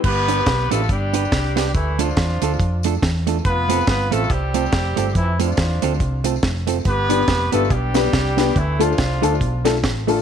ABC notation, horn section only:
X:1
M:4/4
L:1/8
Q:"Swing" 1/4=141
K:Gmix
V:1 name="Horn section"
[B,GB]3 [A,FA] [G,DG]4 | [E,A,E] [F,DF]4 z3 | [B,FB]2 [B,FB] [A,FA] [G,CG]4 | [E,CE] [F,DF]4 z3 |
[B,GB]3 [A,FA] [G,DG]4 | [E,A,E] [F,DF]4 z3 |]